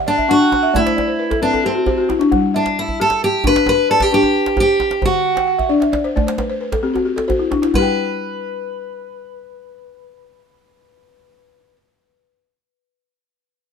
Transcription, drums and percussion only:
0.18 djembe slap soft
0.18 djembe bass soft
0.52 djembe tone medium
0.75 djembe bass medium
0.87 djembe slap medium
0.98 djembe tone medium
1.31 djembe slap medium
1.31 djembe bass medium
1.54 djembe tone medium
1.65 djembe slap soft
1.86 djembe bass medium
2.10 djembe tone medium
2.21 djembe slap soft
2.32 djembe slap soft
2.32 djembe bass medium
2.66 djembe slap medium
2.88 djembe slap soft
2.88 djembe bass soft
3.10 djembe slap medium
3.44 djembe bass medium
3.56 djembe slap medium
3.66 djembe tone medium
4.00 djembe slap medium
4.00 djembe bass medium
4.12 djembe slap soft
4.23 djembe tone medium
4.35 djembe slap soft
4.46 djembe slap medium
4.57 djembe bass medium
4.80 djembe tone medium
4.91 djembe slap medium
5.02 djembe slap soft
5.02 djembe bass medium
5.25 djembe slap soft
5.37 djembe slap medium
5.59 djembe slap soft
5.59 djembe bass medium
5.82 djembe slap medium
5.93 djembe tone medium
6.05 djembe slap soft
6.17 djembe slap soft
6.17 djembe bass medium
6.28 djembe slap medium
6.38 djembe tone medium
6.72 djembe slap medium
6.72 djembe bass medium
6.96 djembe tone medium
7.18 djembe slap medium
7.30 djembe bass medium
7.52 djembe slap soft
7.52 djembe tone medium
7.63 djembe slap soft
7.74 djembe bass medium

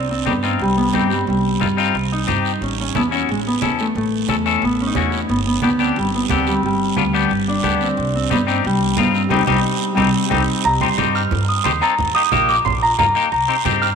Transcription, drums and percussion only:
0.26 high conga medium
0.26 short guiro medium
0.43 short guiro medium
0.59 high conga soft
0.59 long guiro medium
0.93 high conga medium
0.93 short guiro medium
1.10 short guiro medium
1.27 high conga soft
1.27 long guiro medium
1.61 high conga medium
1.61 short guiro medium
1.78 short guiro medium
1.94 high conga soft
1.94 long guiro medium
2.28 high conga medium
2.28 short guiro medium
2.45 short guiro medium
2.62 high conga soft
2.62 long guiro medium
2.95 high conga medium
2.95 short guiro medium
3.12 short guiro medium
3.29 high conga soft
3.29 long guiro medium
3.62 high conga medium
3.62 short guiro medium
3.79 short guiro medium
3.96 high conga soft
3.96 long guiro medium
4.29 high conga medium
4.29 short guiro medium
4.46 short guiro medium
4.62 high conga soft
4.62 long guiro medium
4.95 high conga medium
4.95 short guiro medium
5.12 short guiro medium
5.29 high conga soft
5.29 long guiro medium
5.62 high conga medium
5.62 short guiro medium
5.79 short guiro medium
5.96 high conga soft
5.96 long guiro medium
6.29 high conga medium
6.29 short guiro medium
6.47 short guiro medium
6.63 high conga soft
6.63 long guiro medium
6.97 high conga medium
6.97 short guiro medium
7.14 short guiro medium
7.30 high conga soft
7.30 long guiro medium
7.64 high conga medium
7.64 short guiro medium
7.81 short guiro medium
7.97 high conga soft
7.97 long guiro medium
8.31 high conga medium
8.31 short guiro medium
8.48 short guiro medium
8.64 high conga soft
8.64 long guiro medium
8.97 high conga medium
8.97 short guiro medium
9.15 short guiro medium
9.30 high conga medium
9.30 long guiro loud
9.47 high conga loud
9.47 long guiro medium
9.97 high conga medium
9.97 long guiro loud
10.31 high conga loud
10.31 long guiro medium
10.65 long guiro medium
10.81 high conga medium
10.98 high conga medium
10.98 short guiro medium
11.15 short guiro medium
11.31 low conga medium
11.31 long guiro medium
11.65 high conga medium
11.65 short guiro medium
11.82 short guiro medium
11.98 low conga medium
11.98 long guiro medium
12.32 high conga medium
12.32 short guiro medium
12.49 short guiro medium
12.65 low conga medium
12.65 long guiro medium
12.99 high conga medium
12.99 low conga medium
12.99 short guiro medium
13.15 short guiro medium
13.32 long guiro medium
13.66 high conga medium
13.66 short guiro medium
13.82 short guiro medium

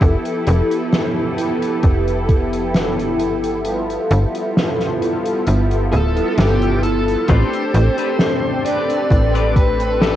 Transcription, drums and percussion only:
0.01 kick loud
0.01 closed hi-hat medium
0.26 closed hi-hat medium
0.47 closed hi-hat medium
0.71 closed hi-hat medium
0.93 snare loud
0.93 closed hi-hat medium
1.38 closed hi-hat medium
1.62 closed hi-hat medium
1.83 kick loud
1.83 closed hi-hat medium
2.08 closed hi-hat soft
2.29 kick loud
2.29 closed hi-hat medium
2.53 closed hi-hat medium
2.74 snare loud
2.74 closed hi-hat medium
2.99 closed hi-hat medium
3.20 closed hi-hat medium
3.44 closed hi-hat medium
3.65 closed hi-hat medium
3.90 closed hi-hat medium
4.11 closed hi-hat medium
4.35 closed hi-hat medium
4.57 snare loud
4.57 closed hi-hat medium
4.80 snare soft
4.80 closed hi-hat medium
5.02 closed hi-hat medium
5.26 closed hi-hat medium
5.47 closed hi-hat loud
5.71 closed hi-hat medium
5.93 closed hi-hat medium
6.17 closed hi-hat medium
6.38 snare loud
6.38 closed hi-hat medium
6.62 closed hi-hat medium
6.83 closed hi-hat medium
7.08 closed hi-hat medium
7.28 kick loud
7.28 closed hi-hat loud
7.53 closed hi-hat medium
7.74 closed hi-hat medium
7.98 closed hi-hat medium
8.19 snare loud
8.19 closed hi-hat medium
8.66 closed hi-hat loud
8.90 closed hi-hat medium
9.10 kick loud
9.10 closed hi-hat medium
9.35 closed hi-hat medium
9.56 kick loud
9.56 closed hi-hat medium
9.80 closed hi-hat medium
10.01 snare loud
10.01 closed hi-hat medium

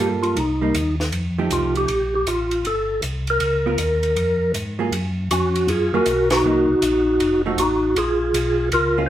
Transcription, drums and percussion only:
0.23 ride soft
0.37 ride soft
0.75 hi-hat pedal soft
0.75 ride medium
1.00 snare soft
1.12 ride medium
1.51 hi-hat pedal soft
1.51 ride medium
1.75 ride soft
1.88 ride medium
2.27 hi-hat pedal soft
2.27 ride medium
2.51 ride soft
2.65 ride soft
3.02 hi-hat pedal soft
3.02 ride medium
3.27 ride soft
3.40 ride medium
3.78 hi-hat pedal medium
3.78 ride medium
4.03 ride soft
4.16 ride soft
4.54 hi-hat pedal soft
4.54 ride medium
4.92 ride medium
5.31 hi-hat pedal medium
5.31 ride medium
5.56 ride soft
5.68 ride medium
6.06 hi-hat pedal medium
6.06 ride medium
6.30 snare medium
6.30 ride medium
6.82 hi-hat pedal soft
6.82 ride medium
7.20 ride medium
7.58 hi-hat pedal medium
7.58 ride medium
7.96 ride medium
8.34 hi-hat pedal medium
8.34 ride medium
8.72 ride medium

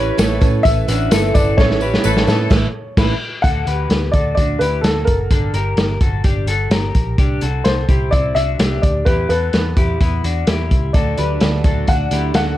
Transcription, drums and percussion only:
0.18 snare loud
0.18 closed hi-hat medium
0.18 tambourine loud
0.42 kick loud
0.42 closed hi-hat medium
0.42 tambourine soft
0.65 kick medium
0.65 closed hi-hat medium
0.65 tambourine soft
0.88 closed hi-hat medium
0.88 tambourine medium
1.11 snare loud
1.11 closed hi-hat loud
1.11 tambourine loud
1.35 kick medium
1.35 closed hi-hat medium
1.35 tambourine medium
1.58 kick loud
1.58 snare medium
1.71 snare soft
1.81 tambourine soft
1.94 snare medium
2.04 tambourine medium
2.17 snare medium
2.27 snare medium
2.27 tambourine soft
2.51 kick loud
2.51 snare loud
2.51 crash medium
2.97 kick loud
2.97 snare loud
2.97 crash medium
3.44 kick medium
3.44 closed hi-hat medium
3.67 closed hi-hat medium
3.90 snare medium
3.90 closed hi-hat medium
4.13 kick medium
4.13 closed hi-hat medium
4.37 kick medium
4.37 closed hi-hat medium
4.61 closed hi-hat medium
4.84 snare medium
4.84 closed hi-hat medium
5.07 kick medium
5.07 closed hi-hat medium
5.31 kick medium
5.31 closed hi-hat medium
5.54 closed hi-hat medium
5.77 snare medium
5.77 closed hi-hat medium
6.01 kick medium
6.01 closed hi-hat medium
6.24 kick medium
6.24 closed hi-hat medium
6.47 closed hi-hat medium
6.71 snare loud
6.71 closed hi-hat medium
6.95 kick medium
6.95 closed hi-hat medium
7.18 kick loud
7.18 closed hi-hat medium
7.41 closed hi-hat medium
7.65 snare medium
7.65 closed hi-hat medium
7.89 kick medium
7.89 closed hi-hat medium
8.13 kick medium
8.13 closed hi-hat medium
8.36 closed hi-hat medium
8.59 snare loud
8.59 closed hi-hat loud
8.83 kick medium
8.83 closed hi-hat medium
9.06 kick medium
9.06 closed hi-hat medium
9.30 closed hi-hat medium
9.53 snare medium
9.53 closed hi-hat medium
9.77 kick medium
9.77 closed hi-hat medium
10.01 kick medium
10.01 closed hi-hat medium
10.24 closed hi-hat medium
10.47 snare loud
10.47 closed hi-hat loud
10.71 kick medium
10.71 closed hi-hat medium
10.94 kick medium
10.94 closed hi-hat medium
11.18 closed hi-hat medium
11.41 snare medium
11.41 closed hi-hat medium
11.64 kick medium
11.64 closed hi-hat medium
11.88 kick medium
11.88 closed hi-hat medium
12.11 closed hi-hat medium
12.34 snare loud
12.34 closed hi-hat medium

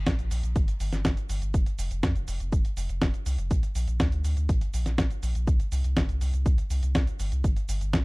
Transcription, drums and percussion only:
0.07 kick loud
0.07 snare loud
0.07 closed hi-hat medium
0.07 cabasa soft
0.19 closed hi-hat soft
0.19 cabasa soft
0.31 open hi-hat loud
0.31 cabasa medium
0.43 closed hi-hat soft
0.43 cabasa soft
0.56 kick loud
0.56 closed hi-hat medium
0.56 cabasa soft
0.68 closed hi-hat soft
0.68 cabasa soft
0.80 open hi-hat loud
0.80 cabasa medium
0.93 snare soft
0.93 closed hi-hat soft
0.93 cabasa soft
1.05 kick loud
1.05 snare loud
1.05 closed hi-hat medium
1.05 cabasa soft
1.17 closed hi-hat soft
1.17 cabasa soft
1.29 open hi-hat loud
1.29 cabasa medium
1.42 closed hi-hat soft
1.42 cabasa soft
1.54 kick loud
1.54 closed hi-hat medium
1.54 cabasa soft
1.66 closed hi-hat soft
1.66 cabasa soft
1.79 open hi-hat loud
1.79 cabasa medium
1.91 closed hi-hat soft
1.91 cabasa soft
2.03 kick loud
2.03 snare loud
2.03 closed hi-hat medium
2.03 cabasa soft
2.16 closed hi-hat soft
2.16 cabasa soft
2.28 open hi-hat loud
2.28 cabasa medium
2.40 closed hi-hat soft
2.40 cabasa soft
2.52 kick loud
2.52 closed hi-hat medium
2.52 cabasa soft
2.65 closed hi-hat soft
2.65 cabasa soft
2.77 open hi-hat loud
2.77 cabasa medium
2.89 closed hi-hat soft
2.89 cabasa soft
3.02 kick loud
3.02 snare loud
3.02 closed hi-hat medium
3.02 cabasa soft
3.14 closed hi-hat soft
3.14 cabasa soft
3.26 open hi-hat loud
3.26 cabasa medium
3.38 closed hi-hat soft
3.38 cabasa soft
3.51 kick loud
3.51 closed hi-hat medium
3.51 cabasa soft
3.63 closed hi-hat soft
3.63 cabasa soft
3.75 open hi-hat loud
3.75 cabasa medium
3.88 closed hi-hat soft
3.88 cabasa soft
4.00 kick loud
4.00 snare loud
4.00 closed hi-hat medium
4.00 cabasa soft
4.12 closed hi-hat soft
4.12 cabasa soft
4.25 open hi-hat loud
4.25 cabasa medium
4.37 closed hi-hat soft
4.37 cabasa soft
4.49 kick loud
4.49 closed hi-hat medium
4.49 cabasa soft
4.61 closed hi-hat soft
4.61 cabasa soft
4.74 open hi-hat loud
4.74 cabasa medium
4.86 snare soft
4.86 closed hi-hat soft
4.86 cabasa soft
4.98 kick loud
4.98 snare loud
4.98 closed hi-hat medium
4.98 cabasa soft
5.11 closed hi-hat soft
5.11 cabasa soft
5.23 open hi-hat loud
5.23 cabasa medium
5.35 closed hi-hat soft
5.35 cabasa soft
5.47 kick loud
5.47 closed hi-hat medium
5.47 cabasa soft
5.60 closed hi-hat soft
5.60 cabasa soft
5.72 open hi-hat loud
5.72 cabasa medium
5.84 closed hi-hat soft
5.84 cabasa soft
5.97 kick loud
5.97 snare loud
5.97 closed hi-hat medium
5.97 cabasa soft
6.09 closed hi-hat soft
6.09 cabasa soft
6.21 open hi-hat loud
6.21 cabasa medium
6.34 closed hi-hat soft
6.34 cabasa soft
6.46 kick loud
6.46 closed hi-hat medium
6.46 cabasa soft
6.58 closed hi-hat soft
6.58 cabasa soft
6.70 open hi-hat loud
6.70 cabasa medium
6.83 closed hi-hat soft
6.83 cabasa soft
6.95 kick loud
6.95 snare loud
6.95 closed hi-hat medium
6.95 cabasa soft
7.07 closed hi-hat soft
7.07 cabasa soft
7.20 open hi-hat loud
7.20 cabasa medium
7.32 closed hi-hat soft
7.32 cabasa soft
7.44 kick loud
7.44 closed hi-hat medium
7.44 cabasa soft
7.56 closed hi-hat soft
7.56 cabasa soft
7.69 open hi-hat loud
7.69 cabasa medium
7.81 closed hi-hat soft
7.81 cabasa soft
7.93 kick loud
7.93 snare loud
7.93 closed hi-hat medium
7.93 cabasa soft

